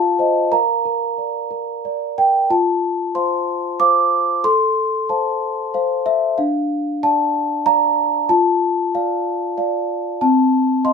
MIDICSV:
0, 0, Header, 1, 2, 480
1, 0, Start_track
1, 0, Key_signature, -1, "major"
1, 0, Tempo, 652884
1, 377, Time_signature, 3, 2, 24, 8
1, 3258, Tempo, 641026
1, 8125, End_track
2, 0, Start_track
2, 0, Title_t, "Celesta"
2, 0, Program_c, 0, 8
2, 0, Note_on_c, 0, 65, 68
2, 0, Note_on_c, 0, 77, 81
2, 0, Note_on_c, 0, 81, 93
2, 24, Control_c, 0, 64, 127
2, 137, Note_on_c, 0, 72, 58
2, 143, Note_on_c, 0, 75, 56
2, 352, Note_off_c, 0, 77, 0
2, 353, Note_off_c, 0, 72, 0
2, 356, Note_off_c, 0, 75, 0
2, 366, Note_off_c, 0, 65, 0
2, 379, Note_off_c, 0, 81, 0
2, 380, Note_on_c, 0, 82, 84
2, 381, Note_on_c, 0, 70, 66
2, 391, Control_c, 0, 64, 0
2, 391, Note_on_c, 0, 77, 62
2, 518, Control_c, 0, 64, 127
2, 619, Note_off_c, 0, 70, 0
2, 628, Note_on_c, 0, 70, 57
2, 868, Note_on_c, 0, 74, 38
2, 1013, Note_off_c, 0, 70, 0
2, 1108, Note_on_c, 0, 70, 47
2, 1255, Note_off_c, 0, 74, 0
2, 1326, Note_off_c, 0, 77, 0
2, 1350, Note_off_c, 0, 82, 0
2, 1360, Note_on_c, 0, 74, 49
2, 1495, Note_off_c, 0, 70, 0
2, 1602, Note_on_c, 0, 70, 49
2, 1603, Note_on_c, 0, 79, 76
2, 1740, Note_off_c, 0, 74, 0
2, 1836, Note_off_c, 0, 70, 0
2, 1836, Note_off_c, 0, 79, 0
2, 1841, Note_on_c, 0, 65, 63
2, 1842, Control_c, 0, 64, 0
2, 1842, Note_on_c, 0, 81, 76
2, 1970, Control_c, 0, 64, 127
2, 2296, Note_off_c, 0, 65, 0
2, 2311, Note_off_c, 0, 81, 0
2, 2314, Note_on_c, 0, 72, 43
2, 2316, Note_on_c, 0, 84, 75
2, 2320, Note_on_c, 0, 77, 46
2, 2757, Note_off_c, 0, 72, 0
2, 2760, Note_off_c, 0, 77, 0
2, 2787, Note_off_c, 0, 84, 0
2, 2792, Note_on_c, 0, 86, 92
2, 2795, Note_on_c, 0, 72, 51
2, 2797, Note_on_c, 0, 77, 57
2, 3234, Note_off_c, 0, 72, 0
2, 3235, Note_off_c, 0, 77, 0
2, 3262, Note_off_c, 0, 86, 0
2, 3264, Note_on_c, 0, 69, 59
2, 3266, Note_on_c, 0, 84, 95
2, 3269, Control_c, 0, 64, 0
2, 3406, Control_c, 0, 64, 127
2, 3727, Note_off_c, 0, 69, 0
2, 3743, Note_off_c, 0, 84, 0
2, 3754, Note_on_c, 0, 72, 43
2, 3754, Note_on_c, 0, 81, 62
2, 3758, Note_on_c, 0, 77, 44
2, 4200, Note_off_c, 0, 72, 0
2, 4202, Note_off_c, 0, 77, 0
2, 4230, Note_off_c, 0, 81, 0
2, 4237, Note_on_c, 0, 72, 54
2, 4241, Note_on_c, 0, 77, 63
2, 4476, Note_on_c, 0, 76, 83
2, 4682, Note_off_c, 0, 72, 0
2, 4684, Note_off_c, 0, 77, 0
2, 4711, Note_off_c, 0, 76, 0
2, 4715, Note_on_c, 0, 77, 73
2, 4717, Control_c, 0, 64, 0
2, 4720, Note_on_c, 0, 62, 61
2, 4863, Control_c, 0, 64, 127
2, 5182, Note_off_c, 0, 62, 0
2, 5194, Note_off_c, 0, 77, 0
2, 5205, Note_on_c, 0, 74, 46
2, 5205, Note_on_c, 0, 81, 96
2, 5210, Note_on_c, 0, 77, 50
2, 5646, Note_off_c, 0, 74, 0
2, 5649, Note_off_c, 0, 77, 0
2, 5674, Note_on_c, 0, 74, 56
2, 5675, Note_on_c, 0, 82, 105
2, 5676, Note_off_c, 0, 81, 0
2, 5679, Note_on_c, 0, 77, 62
2, 6119, Note_off_c, 0, 74, 0
2, 6121, Note_off_c, 0, 77, 0
2, 6149, Note_off_c, 0, 82, 0
2, 6149, Note_on_c, 0, 81, 98
2, 6150, Note_on_c, 0, 65, 73
2, 6158, Control_c, 0, 64, 0
2, 6296, Control_c, 0, 64, 127
2, 6612, Note_off_c, 0, 65, 0
2, 6626, Note_off_c, 0, 81, 0
2, 6639, Note_on_c, 0, 77, 76
2, 6640, Note_on_c, 0, 74, 46
2, 7080, Note_off_c, 0, 74, 0
2, 7103, Note_off_c, 0, 77, 0
2, 7109, Note_on_c, 0, 74, 57
2, 7112, Note_on_c, 0, 77, 60
2, 7552, Note_off_c, 0, 74, 0
2, 7554, Note_off_c, 0, 77, 0
2, 7587, Note_on_c, 0, 81, 83
2, 7590, Note_on_c, 0, 60, 72
2, 7591, Control_c, 0, 64, 0
2, 7699, Control_c, 0, 64, 127
2, 8049, Note_off_c, 0, 60, 0
2, 8060, Note_on_c, 0, 75, 50
2, 8062, Note_off_c, 0, 81, 0
2, 8062, Note_on_c, 0, 84, 88
2, 8067, Note_on_c, 0, 77, 47
2, 8125, Note_off_c, 0, 75, 0
2, 8125, Note_off_c, 0, 77, 0
2, 8125, Note_off_c, 0, 84, 0
2, 8125, End_track
0, 0, End_of_file